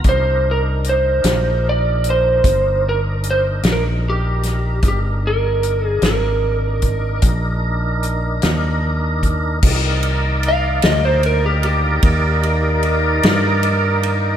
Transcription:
0.04 fingered electric bass C2, tonewheel organ D4 D#4 A#4, kick, closed hi-hat
0.09 electric slide guitar C5
0.51 electric slide guitar A#4
0.84 closed hi-hat
0.89 electric slide guitar C5
1.24 fingered electric bass A#1, snare, closed hi-hat
1.69 electric slide guitar D5
2.04 closed hi-hat
2.10 electric slide guitar C5
2.44 fingered electric bass G1, kick, closed hi-hat
2.89 electric slide guitar A#4
3.24 closed hi-hat
3.31 electric slide guitar C5
3.63 fingered electric bass A#1, snare, closed hi-hat
3.72 electric slide guitar A#4
4.10 electric slide guitar G4
4.43 snare, closed hi-hat
4.82 fingered electric bass G1, tonewheel organ D4 D#4 A#4, kick, closed hi-hat
4.88 electric slide guitar G4
5.27 electric slide guitar A#4
5.63 closed hi-hat
5.86 electric slide guitar G#4
6.02 fingered electric bass G#1, electric slide guitar A#4, snare, closed hi-hat
6.82 kick, closed hi-hat
7.22 fingered electric bass A#1, kick, closed hi-hat
8.03 closed hi-hat
8.42 fingered electric bass D#2, snare, closed hi-hat
9.23 kick, closed hi-hat
9.62 fingered electric bass C2, horn section D#3 A#3 D#4, tonewheel organ D#4 A#4 D5, kick, crash
10.03 ride
10.43 ride
10.48 electric slide guitar F5
10.82 fingered electric bass D2, electric slide guitar D#5, snare, ride
11.05 electric slide guitar C5
11.23 electric slide guitar A#4, ride
11.46 electric slide guitar G4
11.63 electric slide guitar G4, ride
12.03 fingered electric bass D#2, kick, ride
12.43 ride
12.83 ride
13.23 fingered electric bass G2, snare, ride
13.63 ride
14.03 ride

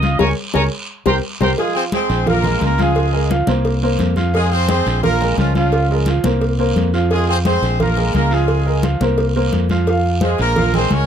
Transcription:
Already playing: fingered electric bass C#2, trumpet section D#5 D#6
0.02 grand piano F4 F5 F6, high bongo, high conga, short guiro
0.19 fingered electric bass C#2, grand piano G#4 A#4 C#5, trumpet section G#5 A#5 C#6, high bongo, high conga, long guiro
0.54 fingered electric bass C#2, grand piano G#4 A#4 C#5, trumpet section G#5 A#5 C#6, high bongo, high conga, long guiro
1.06 fingered electric bass C2, grand piano G4 A#4 C5, trumpet section G5 A#5 C6, high bongo, high conga, long guiro
1.41 fingered electric bass C2, grand piano G4 A#4 C5, trumpet section G5 A#5 C6, high bongo, high conga
1.57 grand piano F3 F4 F5, horn section G#3 F4 G#4, cowbell, high conga, long guiro
1.75 horn section C4 G#4 C5, high conga
1.92 grand piano G#3 G#4 C5, horn section C4 G#4 C5, cowbell, high conga, short guiro
2.09 fingered electric bass A#1, cowbell, high conga, short guiro
2.26 grand piano F3 F4 F5, horn section A#3 F4 A#4, cowbell, high conga, low conga, long guiro
2.44 grand piano G#3 G#4 A#4, cowbell, high conga, low conga
2.61 fingered electric bass C#2, horn section A#3 F4 A#4, cowbell, high conga, short guiro
2.78 grand piano F3 F4 F5, horn section G#3 F4 G#4, high conga, short guiro
2.95 cowbell, high conga, long guiro
3.12 grand piano G#3 G#4 A#4, high conga
3.29 grand piano F3 F4 F5, cowbell, high conga, short guiro
3.47 fingered electric bass C2, grand piano A#3 A#4 C5, high conga, short guiro
3.65 cowbell, high conga, long guiro
3.83 grand piano A#3 A#4 C5, high conga
3.99 fingered electric bass F2, cowbell, high conga, short guiro
4.16 grand piano F3 F4 F5, high conga, short guiro
4.33 grand piano F3 F4 F5, horn section G#3 F4 G#4, cowbell, high conga, long guiro
4.52 horn section C4 G#4 C5, high conga
4.68 grand piano G#3 G#4 C5, horn section C4 G#4 C5, cowbell, high conga, short guiro
4.86 fingered electric bass A#1, cowbell, high conga, short guiro
5.03 grand piano F3 F4 F5, horn section A#3 F4 A#4, cowbell, high conga, low conga, long guiro
5.21 grand piano G#3 G#4 A#4, cowbell, high conga
5.37 fingered electric bass C#2, horn section F3 C#4 F4, cowbell, high conga, short guiro
5.55 grand piano F3 F4 F5, horn section F3 C#4 F4, high conga, short guiro
5.72 cowbell, high conga, long guiro
5.89 grand piano G#3 G#4 A#4, high conga
6.06 grand piano F3 F4 F5, cowbell, high conga, short guiro
6.24 fingered electric bass C2, grand piano A#3 A#4 C5, high conga, short guiro
6.41 cowbell, high conga, long guiro
6.58 grand piano A#3 A#4 C5, high conga
6.76 fingered electric bass F2, cowbell, high conga, short guiro
6.94 grand piano F3 F4 F5, short guiro
7.11 grand piano F3 F4 F5, horn section G#3 F4 G#4, cowbell, high conga, long guiro
7.29 horn section C4 G#4 C5, high conga
7.45 grand piano G#3 G#4 C5, horn section C4 G#4 C5, cowbell, high conga, short guiro
7.62 fingered electric bass A#1, cowbell, high conga, short guiro
7.80 grand piano F3 F4 F5, horn section A#3 F4 A#4, cowbell, high conga, low conga, long guiro
7.96 grand piano G#3 G#4 A#4, cowbell, high conga
8.13 fingered electric bass C#2, horn section A#3 F4 A#4, cowbell, high conga, short guiro
8.31 grand piano F3 F4 F5, horn section G#3 F4 G#4, short guiro
8.48 cowbell, high conga, long guiro
8.66 grand piano G#3 G#4 A#4, high conga
8.83 grand piano F3 F4 F5, cowbell, high conga, short guiro
9.01 fingered electric bass C2, grand piano A#3 A#4 C5, high conga, short guiro
9.18 cowbell, high conga, long guiro
9.35 grand piano A#3 A#4 C5, high conga
9.52 fingered electric bass F2, cowbell, high conga, short guiro
9.69 grand piano F3 F4 F5, high conga, short guiro
9.87 grand piano F3 F4 F5, cowbell, high conga, long guiro
10.05 high conga
10.21 grand piano G#3 G#4 C5, horn section G#3 F4 G#4, cowbell, high conga, short guiro
10.38 fingered electric bass A#1, horn section A#3 F4 A#4, cowbell, high conga, short guiro
10.56 grand piano F3 F4 F5, cowbell, high conga, low conga, long guiro
10.74 grand piano G#3 G#4 A#4, horn section C4 G#4 C5, cowbell, high conga, low conga
10.90 fingered electric bass C#2, horn section C#4 A#4 C#5, cowbell, high conga, short guiro

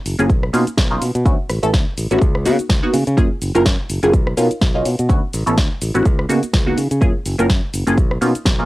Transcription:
0.06 fingered electric bass F#1, open hi-hat, cabasa
0.19 fingered electric bass F#1, analog polysynth A#3 C#4 F4 G#4, closed hi-hat, cabasa
0.29 kick, closed hi-hat, cabasa
0.43 cross-stick
0.53 fingered electric bass B2, analog polysynth A#3 C#4 D#4 F4, open hi-hat, cabasa
0.67 muted fingered electric bass stroke, closed hi-hat, cabasa
0.78 fingered electric bass B1, kick, snare, closed hi-hat, cabasa
0.91 analog polysynth A#3 C#4 D#4 F4
1.01 fingered electric bass B2, open hi-hat, cabasa
1.15 fingered electric bass B2, closed hi-hat, cabasa
1.25 fingered electric bass D2, analog polysynth B3 C#4 E4 F#4, kick, closed hi-hat, cabasa
1.50 fingered electric bass A1, cross-stick, open hi-hat, cabasa
1.63 fingered electric bass A1, analog polysynth B3 C#4 E4 A4, closed hi-hat, cabasa
1.74 kick, snare, closed hi-hat, cabasa
1.98 fingered electric bass A1, open hi-hat, cabasa
2.11 fingered electric bass A1, analog polysynth B3 C#4 E4 F#4, closed hi-hat, cabasa
2.22 fingered electric bass C#2, kick, closed hi-hat, cabasa
2.35 cross-stick
2.45 fingered electric bass C#3, analog polysynth A#3 B3 D#4 F#4, open hi-hat, cabasa
2.59 muted fingered electric bass stroke, closed hi-hat, cabasa
2.70 fingered electric bass C#2, kick, snare, closed hi-hat, cabasa
2.82 analog polysynth A#3 B3 D#4 F#4
2.94 fingered electric bass C#3, open hi-hat, cabasa
3.07 fingered electric bass C#3, closed hi-hat, cabasa
3.17 fingered electric bass F#2, analog polysynth A#3 C#4 F4 G#4, kick, closed hi-hat, cabasa
3.42 fingered electric bass F#1, open hi-hat, cabasa
3.55 fingered electric bass F#1, analog polysynth A#3 C#4 F4 A#4, closed hi-hat, cabasa
3.65 fingered electric bass F#2, kick, snare, closed hi-hat, cabasa
3.90 fingered electric bass F#1, open hi-hat, cabasa
4.03 fingered electric bass F#1, analog polysynth A#3 C#4 F4 G#4, closed hi-hat, cabasa
4.14 fingered electric bass B1, kick, closed hi-hat, cabasa
4.27 cross-stick
4.37 fingered electric bass B2, analog polysynth A#3 C#4 D#4 F4, open hi-hat, cabasa
4.51 muted fingered electric bass stroke, closed hi-hat, cabasa
4.61 fingered electric bass B1, kick, snare, closed hi-hat, cabasa
4.74 analog polysynth A#3 C#4 D#4 F4
4.85 fingered electric bass B2, open hi-hat, cabasa
4.99 fingered electric bass B2, closed hi-hat, cabasa
5.09 fingered electric bass D2, analog polysynth B3 C#4 E4 F#4, kick, closed hi-hat, cabasa
5.33 fingered electric bass A1, open hi-hat, cabasa
5.46 fingered electric bass A1, analog polysynth B3 C#4 E4 A4, closed hi-hat, cabasa
5.58 fingered electric bass D2, kick, snare, closed hi-hat, cabasa
5.82 fingered electric bass A1, open hi-hat, cabasa
5.94 fingered electric bass A1, analog polysynth B3 C#4 E4 F#4, closed hi-hat, cabasa
6.05 fingered electric bass C#2, kick, closed hi-hat, cabasa
6.19 cross-stick
6.29 fingered electric bass C#3, analog polysynth A#3 B3 D#4 F#4, open hi-hat, cabasa
6.43 muted fingered electric bass stroke, closed hi-hat, cabasa
6.54 fingered electric bass C#2, kick, snare, closed hi-hat, cabasa
6.66 analog polysynth A#3 B3 D#4 F#4
6.78 fingered electric bass C#3, open hi-hat, cabasa
6.91 fingered electric bass C#3, closed hi-hat, cabasa
7.01 fingered electric bass F#2, analog polysynth A#3 C#4 F4 G#4, kick, closed hi-hat, cabasa
7.26 fingered electric bass F#1, open hi-hat, cabasa
7.38 fingered electric bass F#1, analog polysynth A#3 C#4 F4 A#4, closed hi-hat, cabasa
7.50 fingered electric bass F#2, kick, snare, closed hi-hat, cabasa
7.74 fingered electric bass F#1, open hi-hat, cabasa
7.87 fingered electric bass F#1, analog polysynth A#3 C#4 F4 G#4, closed hi-hat, cabasa
7.98 fingered electric bass B1, kick, closed hi-hat, cabasa
8.11 cross-stick
8.21 fingered electric bass B2, analog polysynth A#3 C#4 D#4 F4, open hi-hat, cabasa
8.35 muted fingered electric bass stroke, closed hi-hat, cabasa
8.46 fingered electric bass B1, kick, snare, closed hi-hat, cabasa
8.59 analog polysynth A#3 C#4 D#4 F4

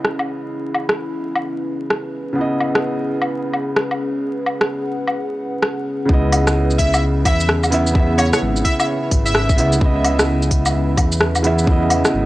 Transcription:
Already playing: felt piano C#3 B3 E4 D#5, analog synth pad C#4 E4 G#4 B4
0.05 cross-stick
0.19 low woodblock
0.74 low woodblock
0.89 cross-stick
1.35 low woodblock
1.90 cross-stick
2.33 felt piano C#3 B3
2.38 felt piano E4 D#5
2.60 low woodblock
2.75 cross-stick
3.22 low woodblock
3.54 low woodblock
3.70 analog synth pad F#5
3.76 cross-stick
3.91 low woodblock
4.46 low woodblock
4.61 cross-stick
5.08 low woodblock
5.63 cross-stick
6.05 detuned saw bass C#2, felt piano C#3 B3, kick
6.11 felt piano E4 D#5
6.32 open hi-hat, low woodblock
6.47 cross-stick, shaker
6.70 shaker
6.78 digital synth lead E5, kick, open hi-hat
6.94 low woodblock, shaker
7.02 detuned saw bass C#2
7.25 detuned saw bass E2, analog synth pad E4, digital synth lead E5, kick, open hi-hat, low woodblock
7.40 shaker
7.49 cross-stick
7.64 low woodblock, shaker
7.70 felt piano C#3 B3 E4 E5, open hi-hat
7.87 shaker
7.91 felt piano C#3 B3, kick
7.96 felt piano E4 E5
8.18 digital synth lead C#5, open hi-hat, low woodblock
8.33 digital synth lead C#5, cross-stick, shaker
8.42 detuned saw bass G#1
8.56 shaker
8.65 digital synth lead E5, kick, open hi-hat
8.80 digital synth lead E5, low woodblock, shaker
9.11 detuned saw bass G#1, kick, open hi-hat
9.26 digital synth lead E5, shaker
9.35 cross-stick
9.49 kick, shaker
9.56 detuned saw bass C#2, felt piano C#3 B3 E4 E5, open hi-hat
9.72 shaker
9.77 felt piano C#3 B3
9.81 detuned saw bass C#2, felt piano E4 D#5, kick
10.04 open hi-hat, low woodblock
10.19 cross-stick, shaker
10.42 shaker
10.51 kick, open hi-hat
10.66 low woodblock, shaker
10.75 detuned saw bass C#2
10.97 detuned saw bass E2, kick, open hi-hat, low woodblock
11.12 shaker
11.21 cross-stick
11.35 low woodblock, shaker
11.43 felt piano C#3 B3 E4 E5, open hi-hat
11.58 shaker
11.64 felt piano C#3 B3, kick
11.69 felt piano E4 D#5
11.90 open hi-hat, low woodblock
12.05 cross-stick, shaker
12.14 detuned saw bass G#1

